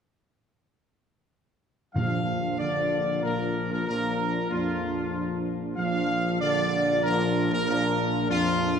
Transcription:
1.94 tuba A#1, timpani A#2, french horn section F3 D4, trombone section F3, trumpet section F5
2.58 trombone section D3, french horn section F3 D4, trumpet section D5
3.22 trombone section A#2, french horn section F3 D4, trumpet section A#4
3.71 trombone section A#2, trumpet section A#4
3.86 trombone section A#2, french horn section F3 D4, trumpet section A#4
4.50 trombone section F2, french horn section F3 D4, trumpet section F4
5.77 tuba A#1, trombone section F3, french horn section F3 D4, trumpet section F5
6.40 trombone section D3, french horn section F3 D4, trumpet section D5
7.03 trombone section A#2, french horn section F3 D4, trumpet section A#4
7.50 trombone section A#2, trumpet section A#4
7.66 trombone section A#2, french horn section F3 D4, trumpet section A#4
8.29 trombone section F2, french horn section F3 D4, trumpet section F4

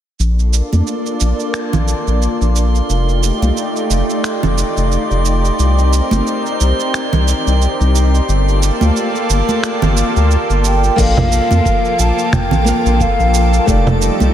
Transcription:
0.19 analog synth bass A#1, analog synth pad A#3 D4 F4 A4 D5, synth texture C6, cabasa
0.39 cabasa
0.53 cabasa
0.73 analog synth bass F2, high conga, cabasa
0.87 cabasa
1.06 cabasa
1.20 analog synth bass A#1, cabasa
1.40 cabasa
1.54 finger snap, cabasa
1.73 analog synth bass A#1, low conga, cabasa
1.88 cabasa
2.07 analog synth bass A#1, cabasa
2.22 cabasa
2.41 analog synth bass A#1, cabasa
2.56 cabasa
2.75 cabasa
2.89 analog synth bass F1, analog synth pad A3 D#4 G4 D5, cabasa
3.09 cabasa
3.23 cabasa
3.42 analog synth bass C2, high conga, cabasa
3.57 cabasa
3.76 cabasa
3.90 analog synth bass F1, cabasa
4.10 cabasa
4.24 finger snap, cabasa
4.43 analog synth bass F1, low conga, cabasa
4.58 cabasa
4.77 analog synth bass F1, cabasa
4.92 cabasa
5.11 analog synth bass F1, cabasa
5.25 cabasa
5.45 cabasa
5.59 analog synth bass C2, analog synth pad C4 A#4, cabasa
5.78 cabasa
5.93 cabasa
6.11 analog synth bass G1, high conga, cabasa
6.27 cabasa
6.46 cabasa
6.61 analog synth bass C2, cabasa
6.80 cabasa
6.94 finger snap, cabasa
7.13 analog synth bass C2, low conga, cabasa
7.28 cabasa
7.47 analog synth bass C2, cabasa
7.62 cabasa
7.81 analog synth bass C2, cabasa
7.95 cabasa
8.15 cabasa
8.29 analog synth bass G1, analog synth pad A#3 F4 A4 D5, cabasa
8.48 cabasa
8.63 cabasa
8.81 analog synth bass D2, high conga, cabasa
8.96 cabasa
9.15 cabasa
9.30 analog synth bass G1, cabasa
9.49 high conga, cabasa
9.64 finger snap, cabasa
9.82 analog synth bass G1, low conga, cabasa
9.97 cabasa
10.16 analog synth bass D2, cabasa
10.31 cabasa
10.50 analog synth bass G1, cabasa
10.65 flute G5, cabasa
10.84 cabasa
10.96 analog synth bass A#1, analog synth pad F3 A#3 F4 A4, nylon-string guitar A#3 F4 A4 D5, flute F5, synth texture D6, kick, crash, cabasa
11.17 low conga, cabasa
11.32 cabasa
11.51 analog synth bass F2, high conga, cabasa
11.65 kick, cabasa
11.85 cabasa
11.99 analog synth bass A#1, flute A5, cabasa
12.19 cabasa
12.33 flute G5, finger snap, kick, low conga, cabasa
12.51 analog synth bass A#1, low conga, cabasa
12.64 nylon-string guitar A#3 F4 A4 F5, cabasa
12.86 analog synth bass A#1, cabasa
13.00 flute F5, kick, cabasa
13.19 analog synth bass A#1, cabasa
13.34 cabasa
13.53 cabasa
13.66 analog synth bass F1, analog synth pad G3 D#4, nylon-string guitar A3 D#4 G4 D5, flute D5, kick, cabasa
13.87 low conga, cabasa
14.02 cabasa
14.20 analog synth bass C2, high conga, cabasa

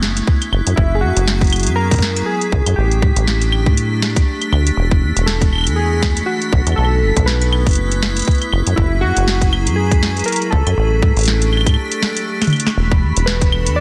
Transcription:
Already playing: acid bass F#1, ambient pad A3 B3 E4, synth texture B6
0.03 snare
0.17 closed hi-hat
0.27 kick
0.42 closed hi-hat, claves
0.52 acid bass F#1, ambient pad F#3 B3 G#4, claves
0.67 acid bass F#2, closed hi-hat
0.76 acid bass F#1, synth keys E4, kick
0.95 synth keys G#4
1.01 acid bass F#2, synth keys F#4
1.17 acid bass F#1, closed hi-hat
1.28 snare
1.41 kick, closed hi-hat
1.44 closed hi-hat
1.47 closed hi-hat
1.50 closed hi-hat
1.53 closed hi-hat, claves
1.56 closed hi-hat
1.60 closed hi-hat
1.63 acid bass F#2, closed hi-hat
1.67 closed hi-hat
1.76 synth keys A#4
1.91 kick, closed hi-hat
1.94 kick, closed hi-hat
1.99 kick, snare
2.16 closed hi-hat
2.26 synth keys G#4
2.41 closed hi-hat
2.52 acid bass C#2, kick
2.66 acid bass F#2, closed hi-hat, claves
2.76 acid bass A1, ambient pad A3 D4 G4, synth keys G4
2.91 closed hi-hat
3.02 acid bass A2, kick
3.16 acid bass A1, closed hi-hat
3.27 snare
3.41 closed hi-hat
3.52 claves
3.66 acid bass A2, kick
3.77 closed hi-hat
4.02 snare
4.16 kick, closed hi-hat
4.42 closed hi-hat, claves
4.52 acid bass D2, claves
4.67 closed hi-hat
4.77 acid bass E1, ambient pad E3 A3 F#4
4.91 kick
5.02 acid bass E2
5.17 acid bass E1, closed hi-hat
5.26 synth keys A4, snare
5.41 kick, closed hi-hat
5.53 claves
5.55 claves
5.58 claves
5.61 claves
5.64 acid bass E2, closed hi-hat, claves
5.76 synth keys G#4
6.03 kick, snare
6.17 closed hi-hat
6.26 synth keys F#4
6.42 closed hi-hat
6.53 acid bass B1, kick
6.67 acid bass E2, closed hi-hat, claves
6.72 synth keys A4, claves
6.78 acid bass B1, ambient pad A3 B3 E4, claves
6.85 claves
7.02 acid bass F#1
7.17 acid bass B1, kick, closed hi-hat
7.26 synth keys B4, snare
7.42 closed hi-hat
7.53 claves
7.67 acid bass F#1, kick, closed hi-hat
7.69 closed hi-hat
7.71 closed hi-hat
7.73 closed hi-hat
7.75 closed hi-hat
7.92 closed hi-hat
8.03 snare
8.17 closed hi-hat
8.19 closed hi-hat
8.22 closed hi-hat
8.25 kick, closed hi-hat
8.31 closed hi-hat
8.35 closed hi-hat
8.38 closed hi-hat
8.42 closed hi-hat, claves
8.52 acid bass F#1, ambient pad F#3 G#4 B4, claves
8.67 acid bass F#2, closed hi-hat
8.76 acid bass F#1, synth keys E4, kick
9.01 acid bass F#2, synth keys F#4
9.17 acid bass F#1, closed hi-hat
9.28 snare
9.41 kick, closed hi-hat
9.53 claves
9.67 acid bass F#2, closed hi-hat
9.76 synth keys G#4
9.91 kick, closed hi-hat
10.03 snare
10.17 closed hi-hat
10.19 closed hi-hat
10.24 synth keys A#4, closed hi-hat
10.28 closed hi-hat
10.32 closed hi-hat
10.36 closed hi-hat
10.42 closed hi-hat
10.51 acid bass C#2, synth keys A4, kick
10.66 acid bass F#2, closed hi-hat, claves
10.78 acid bass A1, ambient pad A3 D4 G4
11.02 acid bass A2, kick
11.16 acid bass A1, closed hi-hat
11.19 closed hi-hat
11.21 closed hi-hat
11.23 closed hi-hat
11.25 snare, closed hi-hat
11.42 closed hi-hat
11.53 claves
11.57 claves
11.61 claves
11.66 acid bass A2, kick, closed hi-hat, claves
11.69 claves
11.74 claves
11.92 closed hi-hat
12.03 snare
12.17 closed hi-hat
12.42 snare, closed hi-hat, claves
12.44 closed hi-hat
12.47 closed hi-hat, mid tom
12.50 closed hi-hat
12.53 closed hi-hat, claves
12.56 closed hi-hat
12.60 closed hi-hat
12.63 snare, closed hi-hat
12.77 acid bass E1, ambient pad E3 D4 F#4 A4, synth texture B5
12.92 kick
13.02 acid bass E2
13.17 acid bass E1, closed hi-hat
13.26 synth keys B4, snare
13.41 kick, closed hi-hat
13.52 claves
13.67 acid bass E2, closed hi-hat
13.76 synth keys D5

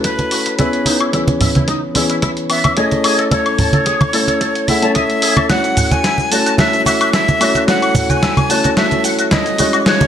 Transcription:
Already playing: grand piano A3 C#4 E4 F#4 B4
0.04 flute B4, clean electric guitar B4, kick, closed hi-hat
0.19 closed hi-hat, muted conga
0.31 clean electric guitar F#4, open hi-hat
0.46 clean electric guitar B5, closed hi-hat
0.58 grand piano B3 C#4 E4 G#4 C#5, flute B4, clean electric guitar E5, kick, closed hi-hat, muted conga
0.73 closed hi-hat
0.86 clean electric guitar D#4, open hi-hat, muted conga
1.00 clean electric guitar E4, closed hi-hat, high woodblock
1.12 grand piano E3 B3 C#4 G#4 C#5, clean electric guitar E4, kick, closed hi-hat
1.28 closed hi-hat, muted conga
1.41 clean electric guitar E5, open hi-hat, low conga
1.55 clean electric guitar E4, closed hi-hat, muted conga, high conga
1.68 clean electric guitar D#4, kick, closed hi-hat
1.94 grand piano E3 B3 C#4 G#4 C#5, clean electric guitar E4, open hi-hat, muted conga
2.10 clean electric guitar E4, closed hi-hat
2.22 clean electric guitar E4, kick, closed hi-hat, muted conga
2.37 closed hi-hat
2.50 clean electric guitar B3, flute E5, open hi-hat, high woodblock
2.64 clean electric guitar E5, closed hi-hat, muted conga, high woodblock
2.77 grand piano A3 C#4 E4 G#4 C#5, clean electric guitar G#4, flute D#5, kick, closed hi-hat
2.91 closed hi-hat, muted conga
3.04 clean electric guitar G#4, open hi-hat, high woodblock
3.18 clean electric guitar A4, closed hi-hat
3.31 grand piano A3 C#4 E4 C#5, clean electric guitar A4, flute C#5, kick, closed hi-hat, muted conga
3.46 closed hi-hat, high woodblock
3.58 clean electric guitar A5, open hi-hat, muted conga, low conga
3.73 clean electric guitar A4, closed hi-hat, high conga
3.86 clean electric guitar G#4, kick, closed hi-hat
4.01 closed hi-hat, muted conga, high conga, high woodblock
4.13 grand piano A3 C#4 E4 C#5, clean electric guitar A4, open hi-hat
4.28 clean electric guitar A4, closed hi-hat, muted conga
4.40 clean electric guitar A4, kick, closed hi-hat
4.55 closed hi-hat
4.68 grand piano A3 C#4 E4 G#4 F#5, clean electric guitar E4, flute E5, open hi-hat, muted conga
4.82 grand piano A3 C#4 E4 C#5, clean electric guitar A5, closed hi-hat
4.95 clean electric guitar D#5, flute E5, kick, closed hi-hat, muted conga
5.10 closed hi-hat
5.22 clean electric guitar G#4, open hi-hat
5.36 clean electric guitar A4, closed hi-hat, muted conga, high woodblock
5.49 grand piano A3 C#4 E4 F#4 C#5, clean electric guitar F#4, flute F#5, kick, snare, closed hi-hat, muted conga, shaker
5.64 closed hi-hat, shaker
5.77 clean electric guitar F#5, open hi-hat, low conga, shaker
5.91 clean electric guitar F#4, flute G#5, closed hi-hat, muted conga, high conga, shaker
6.04 clean electric guitar E4, kick, snare, closed hi-hat, shaker
6.18 muted conga, shaker
6.31 grand piano A3 C#4 E4 F#4 C#5, clean electric guitar F#4, flute A5, open hi-hat, shaker
6.46 clean electric guitar F#4, closed hi-hat, shaker
6.58 grand piano A3 C#4 E4 F#4 C#5, clean electric guitar F#4, flute E5, kick, snare, closed hi-hat, muted conga, shaker
6.73 closed hi-hat, shaker
6.86 flute E5, clean electric guitar F#5, open hi-hat, muted conga, high woodblock, shaker
7.01 clean electric guitar F#4, closed hi-hat, high woodblock, shaker
7.13 clean electric guitar E4, flute E5, kick, snare, closed hi-hat, shaker
7.28 closed hi-hat, muted conga, shaker
7.40 grand piano A3 C#4 E4 F#4 C#5, clean electric guitar F#4, open hi-hat, high woodblock, shaker
7.55 clean electric guitar F#4, closed hi-hat, muted conga, shaker
7.67 grand piano A3 C#4 E4 F#4 C#5, clean electric guitar F#4, flute F#5, kick, snare, closed hi-hat, shaker
7.82 closed hi-hat, high woodblock, shaker
7.95 clean electric guitar F#5, open hi-hat, muted conga, low conga, shaker
8.10 clean electric guitar F#4, flute G#5, closed hi-hat, high conga, shaker
8.22 clean electric guitar E4, kick, snare, closed hi-hat, muted conga, shaker
8.37 closed hi-hat, high conga, high woodblock, shaker
8.49 grand piano A3 C#4 E4 F#4 C#5, clean electric guitar F#4, flute A5, open hi-hat, shaker
8.64 clean electric guitar F#4, closed hi-hat, muted conga, shaker
8.77 grand piano A3 C#4 E4 F#4 C#5, clean electric guitar F#4, flute E5, kick, snare, closed hi-hat, shaker
8.91 closed hi-hat, muted conga, shaker
9.04 clean electric guitar F#5, open hi-hat, shaker
9.19 clean electric guitar F#4, closed hi-hat, shaker
9.31 clean electric guitar E4, flute D#5, kick, snare, closed hi-hat, muted conga, shaker
9.46 closed hi-hat, shaker
9.58 grand piano G#3 C#4 E4 F#4 C#5, clean electric guitar F#4, open hi-hat, muted conga, shaker
9.73 clean electric guitar F#4, closed hi-hat, high woodblock, shaker
9.86 grand piano G#3 C#4 E4 F#4, clean electric guitar F#4, flute C#5, kick, snare, closed hi-hat, shaker
10.01 closed hi-hat, muted conga, shaker

